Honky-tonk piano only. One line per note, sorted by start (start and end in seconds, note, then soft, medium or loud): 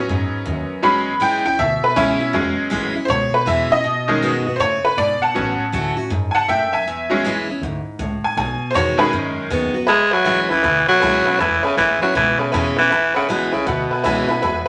0.00 0.79 F#3 medium
0.00 0.79 B3 soft
0.00 0.79 C#4 medium
0.82 1.11 F#3 medium
0.82 1.11 G#3 medium
0.82 1.11 C#4 medium
0.82 1.20 B5 medium
1.22 1.44 G5 medium
1.46 1.58 G5 medium
1.59 1.82 E5 loud
1.84 1.96 B4 medium
1.96 2.31 C#4 loud
1.96 2.33 E4 loud
2.33 2.92 F#3 medium
2.33 2.93 G#3 medium
2.33 2.93 C#4 medium
3.05 3.08 C5 medium
3.10 3.33 C#5 loud
3.34 3.47 B4 medium
3.47 3.71 E5 medium
3.72 4.45 D#5 medium
4.08 4.30 D#3 medium
4.08 4.30 G#3 medium
4.08 4.31 C#4 medium
4.56 4.59 C5 medium
4.60 4.84 C#5 loud
4.85 4.97 B4 medium
4.98 5.21 D5 loud
5.22 5.93 F#5 medium
5.22 5.95 A5 medium
5.34 5.63 F#3 medium
5.34 5.63 B3 medium
5.34 5.64 C#4 medium
6.31 6.47 F#5 medium
6.31 6.33 G#5 medium
6.35 6.48 A5 loud
6.48 6.71 E5 medium
6.48 6.72 G5 medium
6.73 7.44 E5 medium
6.73 7.46 G#5 medium
7.10 7.32 F#3 medium
7.10 7.32 G#3 medium
7.10 7.33 C#4 medium
8.24 8.36 G#5 medium
8.38 8.74 G#5 medium
8.71 8.74 C5 medium
8.75 8.99 C#5 loud
8.98 9.47 D#3 medium
8.98 9.47 G#3 soft
8.98 9.47 C#4 medium
8.98 9.11 G#4 medium
8.98 9.12 B4 loud
9.87 10.02 B4 medium
9.87 10.03 E5 medium
9.87 10.03 G#5 loud
10.11 10.20 B4 loud
10.11 10.21 E5 medium
10.11 10.21 G#5 loud
10.24 10.40 B4 medium
10.24 10.40 E5 medium
10.24 10.41 F#5 medium
10.49 10.58 B4 medium
10.49 10.58 E5 medium
10.49 10.58 G#5 medium
10.63 10.78 B4 medium
10.63 10.79 E5 medium
10.63 10.79 G#5 medium
10.87 10.96 B4 medium
10.87 10.96 E5 medium
10.87 10.97 G#5 medium
11.00 11.16 B4 loud
11.00 11.16 E5 medium
11.00 11.17 G#5 loud
11.25 11.34 B4 medium
11.25 11.34 E5 medium
11.25 11.35 G#5 medium
11.39 11.54 B4 medium
11.39 11.54 E5 medium
11.39 11.55 G#5 loud
11.63 11.72 B4 loud
11.63 11.72 E5 medium
11.63 11.72 G#5 loud
11.77 11.92 B4 medium
11.77 11.92 E5 medium
11.77 11.93 G#5 medium
12.01 12.10 B4 medium
12.01 12.10 E5 medium
12.01 12.10 G#5 medium
12.15 12.30 B4 medium
12.15 12.30 E5 medium
12.15 12.31 G#5 medium
12.38 12.47 B4 medium
12.38 12.48 E5 medium
12.38 12.48 G#5 medium
12.52 12.67 B4 loud
12.52 12.68 E5 loud
12.52 12.68 G#5 loud
12.77 12.85 B4 medium
12.77 12.86 E5 medium
12.77 12.86 F#5 medium
12.90 13.05 B4 loud
12.90 13.06 E5 medium
12.90 13.06 G#5 loud
13.15 13.23 B4 loud
13.15 13.24 E5 loud
13.15 13.24 F#5 loud
13.28 13.43 B4 medium
13.28 13.44 E5 medium
13.28 13.44 G#5 medium
13.52 13.61 B4 medium
13.52 13.61 E5 medium
13.52 13.62 B5 medium
13.66 13.81 B4 medium
13.66 13.82 E5 medium
13.66 13.82 F#5 medium
13.91 13.99 B4 medium
13.91 13.99 E5 medium
13.91 14.00 G#5 medium
14.04 14.19 B4 loud
14.04 14.19 E5 loud
14.04 14.20 G#5 loud
14.28 14.37 B4 medium
14.28 14.37 E5 medium
14.28 14.38 G#5 medium
14.42 14.57 B4 loud
14.42 14.57 E5 loud
14.42 14.58 G#5 loud